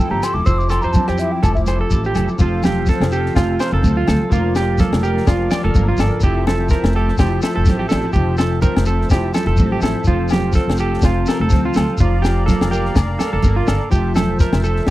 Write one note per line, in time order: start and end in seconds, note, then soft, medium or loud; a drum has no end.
0.00 0.46 F3 medium
0.00 0.96 C4 medium
0.00 2.35 C4 medium
0.00 0.45 E4 medium
0.00 2.36 E4 medium
0.00 0.10 A4 medium
0.00 0.24 A4 medium
0.00 0.45 A4 loud
0.00 0.12 G5 medium
0.11 0.20 G1 medium
0.11 0.34 G4 medium
0.11 0.25 A#5 loud
0.23 0.71 A4 medium
0.23 0.35 C6 loud
0.23 cross-stick medium
0.23 closed hi-hat medium
0.23 muted conga soft
0.23 low agogo medium
0.23 shekere medium
0.34 0.44 E1 medium
0.34 0.47 D6 medium
0.46 0.77 F1 medium
0.46 1.42 F3 medium
0.46 2.37 G4 loud
0.46 0.69 C5 medium
0.46 0.60 E6 loud
0.46 kick loud
0.46 muted conga soft
0.46 shekere loud
0.58 0.71 D6 medium
0.58 shekere soft
0.69 0.85 G4 medium
0.69 0.83 A4 medium
0.69 0.83 C6 loud
0.69 cross-stick medium
0.69 closed hi-hat soft
0.69 muted conga soft
0.69 low agogo medium
0.69 shekere medium
0.82 1.04 F2 medium
0.82 1.67 A4 medium
0.82 1.07 C5 medium
0.82 0.94 A#5 medium
0.82 shekere soft
0.92 2.37 C4 medium
0.92 1.10 A5 loud
0.92 kick medium
0.92 high conga loud
0.92 shekere loud
1.08 1.37 F2 medium
1.08 1.31 G4 medium
1.08 1.21 C5 medium
1.08 cross-stick medium
1.08 low agogo medium
1.08 shekere soft
1.18 2.37 E4 medium
1.18 1.33 E5 medium
1.18 closed hi-hat medium
1.18 shekere medium
1.32 1.46 G5 medium
1.43 1.82 F1 medium
1.43 2.37 F3 medium
1.43 1.55 A4 medium
1.43 1.54 A5 loud
1.43 kick medium
1.43 cross-stick medium
1.43 muted conga soft
1.43 low conga medium
1.43 low agogo medium
1.43 shekere loud
1.54 1.61 E5 medium
1.54 kick medium
1.54 shekere soft
1.66 1.90 A4 medium
1.66 1.80 C5 medium
1.66 cross-stick medium
1.66 closed hi-hat soft
1.66 high conga medium
1.66 low agogo medium
1.66 shekere medium
1.81 2.03 A4 medium
1.91 2.11 A1 loud
1.91 2.14 A4 medium
1.91 kick medium
1.91 shekere loud
2.04 2.28 G4 medium
2.04 shekere soft
2.15 2.26 F1 medium
2.15 2.36 A4 medium
2.15 closed hi-hat medium
2.15 muted conga soft
2.15 high conga medium
2.15 low agogo medium
2.15 shekere medium
2.28 shekere soft
2.38 2.90 F1 medium
2.38 4.28 F3 medium
2.38 2.86 C4 soft
2.38 3.35 F4 medium
2.38 2.63 F4 medium
2.38 4.29 A4 medium
2.38 3.11 A4 medium
2.38 4.29 C5 medium
2.38 6.19 F5 medium
2.38 kick loud
2.38 muted conga soft
2.38 shekere loud
2.63 2.87 G4 medium
2.63 snare medium
2.63 high conga loud
2.63 low agogo medium
2.63 shekere medium
2.86 3.81 C4 medium
2.86 3.11 A4 medium
2.86 kick loud
2.86 snare soft
2.86 shekere loud
3.00 3.29 F1 medium
3.00 snare medium
3.00 low agogo medium
3.11 3.35 G4 medium
3.11 3.59 A4 medium
3.11 muted conga soft
3.11 shekere medium
3.26 snare soft
3.34 3.55 F1 medium
3.34 4.31 C3 medium
3.34 4.05 F4 medium
3.34 3.58 F4 medium
3.34 kick loud
3.34 snare medium
3.34 muted conga soft
3.34 low agogo medium
3.34 shekere loud
3.59 3.82 A#4 medium
3.59 3.72 C5 medium
3.59 snare medium
3.59 muted conga soft
3.59 low agogo medium
3.59 shekere medium
3.73 3.81 F1 loud
3.73 3.96 A4 medium
3.82 4.03 D2 loud
3.82 4.28 C4 medium
3.82 4.28 A4 medium
3.82 kick medium
3.82 high conga medium
3.82 shekere loud
3.97 4.07 F4 medium
4.06 4.18 D2 loud
4.06 4.28 F4 medium
4.06 4.30 A4 medium
4.06 snare medium
4.06 high conga medium
4.06 low agogo medium
4.06 shekere medium
4.29 4.81 F1 medium
4.29 5.25 F3 medium
4.29 4.78 A#3 medium
4.29 4.55 F4 medium
4.29 5.02 A#4 medium
4.29 6.22 A#4 medium
4.29 6.21 D5 medium
4.29 muted clean electric guitar stroke medium
4.29 kick loud
4.29 shekere medium
4.55 4.78 G4 medium
4.55 snare medium
4.55 low agogo medium
4.55 shekere medium
4.78 5.74 A#3 medium
4.78 5.02 A4 medium
4.78 kick loud
4.78 snare soft
4.78 high conga medium
4.78 shekere loud
4.92 5.20 F1 medium
4.92 snare medium
4.92 low agogo medium
5.03 5.26 G4 medium
5.03 5.51 A#4 medium
5.03 shekere medium
5.17 snare soft
5.26 5.47 F1 medium
5.26 6.21 F3 medium
5.26 5.99 D4 medium
5.26 5.50 F4 medium
5.26 kick loud
5.26 snare medium
5.26 low agogo medium
5.26 shekere loud
5.51 5.64 G4 medium
5.51 5.63 D5 medium
5.51 snare medium
5.51 muted conga soft
5.51 high conga medium
5.51 low agogo medium
5.51 shekere medium
5.64 5.73 F1 medium
5.64 5.87 A4 medium
5.64 5.75 A#4 medium
5.75 5.95 G1 loud
5.75 6.23 A#3 medium
5.75 6.21 A#4 medium
5.75 kick loud
5.75 high conga medium
5.75 shekere loud
5.88 5.99 F4 medium
5.97 6.09 G1 medium
5.97 6.23 D4 medium
5.97 6.22 A4 medium
5.97 snare medium
5.97 low agogo medium
5.97 shekere medium
6.21 6.73 F1 medium
6.21 7.18 F3 medium
6.21 6.70 C4 medium
6.21 7.19 E4 medium
6.21 6.46 G4 medium
6.21 6.95 A4 medium
6.21 11.95 C5 medium
6.21 10.03 E5 medium
6.21 11.95 A5 medium
6.21 kick loud
6.21 muted conga soft
6.21 shekere loud
6.47 6.70 A4 medium
6.47 snare medium
6.47 high conga medium
6.47 low agogo medium
6.69 7.68 C4 medium
6.69 6.94 A#4 medium
6.69 kick loud
6.69 snare soft
6.69 shekere loud
6.84 7.12 F1 medium
6.84 snare medium
6.84 low agogo medium
6.95 7.09 G4 medium
6.95 7.18 A4 medium
6.95 muted conga soft
7.08 7.43 A4 medium
7.08 snare soft
7.17 7.38 F1 loud
7.17 8.14 F3 medium
7.17 7.91 E4 medium
7.17 7.42 G4 medium
7.17 kick loud
7.17 snare medium
7.17 muted conga soft
7.17 low agogo medium
7.17 shekere loud
7.42 7.54 A4 medium
7.42 7.67 A4 medium
7.42 snare medium
7.42 muted conga soft
7.42 low agogo medium
7.42 shekere medium
7.56 7.66 F1 medium
7.56 7.79 A4 medium
7.65 7.87 A1 medium
7.65 8.63 C4 medium
7.65 7.80 G4 medium
7.65 kick medium
7.65 snare soft
7.65 high conga medium
7.65 shekere loud
7.79 7.88 G4 medium
7.79 8.15 A4 medium
7.89 8.02 A1 loud
7.89 8.05 D4 medium
7.89 8.13 A4 medium
7.89 snare medium
7.89 high conga medium
7.89 low agogo medium
7.89 shekere medium
8.05 8.15 E4 medium
8.13 8.65 F1 medium
8.13 9.10 F3 medium
8.13 8.37 G4 medium
8.13 kick loud
8.13 muted conga soft
8.13 shekere medium
8.38 8.61 A4 medium
8.38 snare medium
8.38 low agogo medium
8.38 shekere medium
8.62 9.57 C4 medium
8.62 8.85 A#4 medium
8.62 kick medium
8.62 high conga loud
8.62 shekere loud
8.76 9.05 F1 medium
8.76 snare medium
8.76 low agogo medium
8.85 9.10 A4 medium
8.85 muted clean electric guitar stroke medium
8.85 muted conga soft
8.85 shekere medium
9.00 9.34 A4 soft
9.00 snare soft
9.10 9.31 F1 medium
9.10 10.06 F3 medium
9.10 9.82 E4 medium
9.10 9.34 G4 medium
9.10 kick loud
9.10 snare medium
9.10 muted conga soft
9.10 low agogo medium
9.10 shekere loud
9.34 9.46 A4 medium
9.34 9.58 A4 medium
9.34 snare medium
9.34 muted conga soft
9.34 high conga medium
9.34 low agogo medium
9.34 shekere medium
9.46 9.56 F1 medium
9.46 9.70 A4 medium
9.57 9.79 A1 medium
9.57 10.04 C4 medium
9.57 10.04 A4 medium
9.57 kick medium
9.57 shekere loud
9.61 high conga medium
9.72 9.82 G4 medium
9.81 9.93 A1 medium
9.81 10.04 E4 medium
9.81 10.06 A4 medium
9.81 snare medium
9.81 low agogo medium
9.81 shekere loud
10.04 10.57 F1 medium
10.04 11.99 F3 medium
10.04 10.54 C4 medium
10.04 10.30 F4 medium
10.04 kick loud
10.04 shekere loud
10.08 11.05 F4 medium
10.08 10.79 A4 medium
10.08 13.89 F5 medium
10.08 muted conga soft
10.29 10.54 G4 medium
10.29 snare medium
10.29 low agogo medium
10.29 shekere medium
10.33 high conga medium
10.53 11.51 C4 medium
10.53 10.78 A4 medium
10.53 kick loud
10.53 snare soft
10.53 shekere loud
10.68 10.96 F1 medium
10.68 snare medium
10.68 low agogo medium
10.77 11.02 G4 medium
10.77 11.27 A4 medium
10.77 shekere medium
10.81 muted conga soft
10.94 snare soft
11.02 11.23 F1 medium
11.02 12.00 C3 medium
11.02 11.26 F4 medium
11.02 11.76 F4 medium
11.02 kick loud
11.02 snare medium
11.02 muted conga soft
11.02 low agogo medium
11.02 shekere loud
11.26 11.40 A4 medium
11.26 11.52 A#4 medium
11.26 snare medium
11.26 muted conga soft
11.26 low agogo medium
11.26 shekere medium
11.40 11.49 F1 medium
11.40 11.63 A4 medium
11.50 11.71 D2 medium
11.50 11.97 C4 medium
11.50 11.97 A4 medium
11.50 kick loud
11.50 snare soft
11.50 high conga medium
11.50 shekere loud
11.65 11.75 F4 medium
11.74 11.86 D2 medium
11.74 11.98 A4 medium
11.74 snare medium
11.74 high conga medium
11.74 low agogo medium
11.74 shekere loud
11.78 11.98 F4 medium
11.98 12.50 F1 loud
11.98 12.95 F3 medium
11.98 12.22 F4 medium
11.98 13.90 D5 medium
11.98 13.90 A#5 loud
11.98 kick loud
11.98 shekere loud
12.22 12.45 G4 medium
12.22 snare medium
12.22 low agogo medium
12.22 shekere medium
12.46 13.42 A#3 medium
12.46 12.69 A4 medium
12.46 kick loud
12.46 snare soft
12.46 high conga loud
12.46 shekere loud
12.61 12.89 F1 medium
12.61 snare medium
12.61 low agogo medium
12.71 12.94 G4 medium
12.71 13.20 A#4 medium
12.71 muted conga soft
12.71 shekere medium
12.85 snare soft
12.95 13.15 F1 medium
12.95 13.66 D4 medium
12.95 muted clean electric guitar stroke medium
12.95 kick loud
12.95 snare medium
12.95 muted conga soft
12.95 low agogo medium
12.95 shekere loud
13.19 13.31 A4 medium
13.19 13.43 A#4 medium
13.19 snare medium
13.19 muted conga soft
13.19 high conga medium
13.19 low agogo medium
13.19 shekere medium
13.33 13.42 F1 medium
13.33 13.55 A4 medium
13.43 13.63 G1 loud
13.43 13.91 A#3 medium
13.43 13.89 A#4 medium
13.43 kick medium
13.43 high conga medium
13.43 shekere loud
13.56 13.67 F4 medium
13.67 13.78 G1 medium
13.67 13.91 D4 medium
13.67 13.90 A4 medium
13.67 snare medium
13.67 low agogo medium
13.67 shekere medium
13.90 14.42 F1 medium
13.90 14.87 F3 medium
13.90 14.14 G4 medium
13.90 14.90 C5 medium
13.90 14.90 E5 medium
13.90 14.90 A5 loud
13.90 kick medium
13.90 muted conga soft
13.90 shekere loud
14.15 14.38 A4 medium
14.15 snare medium
14.15 high conga medium
14.15 low agogo medium
14.15 shekere medium
14.40 14.63 A#4 medium
14.40 kick loud
14.40 snare soft
14.40 shekere loud
14.53 14.81 F1 medium
14.53 snare medium
14.53 low agogo medium
14.64 14.87 A4 medium
14.64 14.90 A4 medium
14.64 muted conga soft
14.64 shekere medium
14.76 snare soft
14.87 snare medium